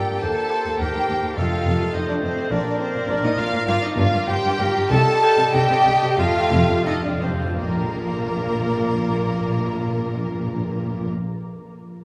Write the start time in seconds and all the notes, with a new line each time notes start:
Already playing: A#3 G4 A4 D5 G5
0.07 G2
0.21 D#2 G4 A4 C5 A5
0.51 C5
0.66 D#2
0.79 D#2 G4 A#4 G5
0.94 D#2
1.09 D#2
1.23 D#2
1.36 F1 F2 A3 F4 A4 D#5 F5
1.66 F1 F2
1.80 F2
1.92 F1 F2 D#4 C5 D#5
2.06 F2 D4 D5
2.21 F1 F2 C4 C5
2.37 F2
2.50 A#1 A#2 A#3 D4 A#4 D5
2.79 C4 C5
2.94 A#2
3.08 A#1 A#2 D4 D5
3.23 A#2 D#4 D#5
3.37 A#1 A#2 F4 F5
3.53 A#2
3.67 G1 G2 F4 D5 F5
3.82 D#4 D#5
3.97 G1 G2 F4 F5
4.13 G2
4.27 G1 G2 G4 C5 G5
4.44 G2
4.59 G1 G2 A#4
4.75 G2
4.89 C2 C3 G3 A4 D#5 A5
5.24 G4
5.38 C3
5.52 C2 C3 D#4 G4 G5
5.70 C3
5.85 C2 C3
6.02 C3
6.17 F1 F2 A3 F4 F5
6.26 F2
6.35 F2
6.44 F2
6.51 F1 F2
6.61 F2
6.69 F2
6.78 F2
6.85 F1 F2 D#4 A4 D#5
6.96 F2
7.02 F2 D4 D5
7.15 F2
7.20 F1 F2 C4 C5
7.33 F2
7.40 F2
7.56 A#1 A#2 A#3 F4 A#4 D5 A#5
7.62 A#2
7.69 A#2
7.76 A#2
7.83 A#2
7.90 A#2
7.97 A#2
8.05 A#2
8.12 A#2
8.19 A#2
8.26 A#2
8.32 A#2
8.39 A#2
8.46 A#2
8.53 A#2
8.59 A#2
8.66 A#2
8.73 A#2
8.80 A#2
8.86 A#2
8.93 A#2
8.99 A#2
9.06 A#2
9.12 A#2
9.18 A#2
9.26 A#2
9.32 A#2
9.39 A#2
9.46 A#2
9.52 A#2
9.60 A#2
9.67 A#2
9.73 A#2
9.80 A#2
9.87 A#2
9.93 A#2
10.00 A#2
10.06 A#2
10.13 A#2
10.20 A#2
10.27 A#2
10.34 A#2
10.40 A#2
10.46 A#2
10.53 A#2
10.59 A#2
10.66 A#2
10.72 A#2
10.80 A#2
10.86 A#2
10.93 A#2
11.00 A#2
11.06 A#2